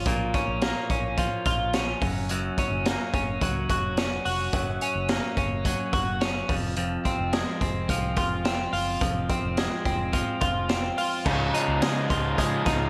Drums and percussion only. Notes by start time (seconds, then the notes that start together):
0.06 kick, closed hi-hat
0.34 kick, closed hi-hat
0.62 snare, closed hi-hat
0.90 kick, closed hi-hat
1.18 kick, closed hi-hat
1.46 kick, closed hi-hat
1.74 snare, closed hi-hat
2.02 kick, open hi-hat
2.29 closed hi-hat
2.58 kick, closed hi-hat
2.86 snare, closed hi-hat
3.14 kick, closed hi-hat
3.41 kick, closed hi-hat
3.70 kick, closed hi-hat
3.97 snare, closed hi-hat
4.25 open hi-hat
4.53 kick, closed hi-hat
4.81 closed hi-hat
5.09 snare, closed hi-hat
5.37 kick, closed hi-hat
5.65 kick, closed hi-hat
5.93 kick, closed hi-hat
6.21 snare, closed hi-hat
6.49 kick, open hi-hat
6.77 closed hi-hat
7.05 kick, closed hi-hat
7.33 snare, closed hi-hat
7.61 kick, closed hi-hat
7.89 kick, closed hi-hat
8.17 kick, closed hi-hat
8.45 snare, closed hi-hat
8.73 open hi-hat
9.01 kick, closed hi-hat
9.30 kick, closed hi-hat
9.57 snare, closed hi-hat
9.85 kick, closed hi-hat
10.13 kick, closed hi-hat
10.41 kick, closed hi-hat
10.69 snare, closed hi-hat
10.98 open hi-hat
11.26 kick, crash
11.54 closed hi-hat
11.82 snare, closed hi-hat
12.10 kick, closed hi-hat
12.38 kick, closed hi-hat
12.66 kick, snare, closed hi-hat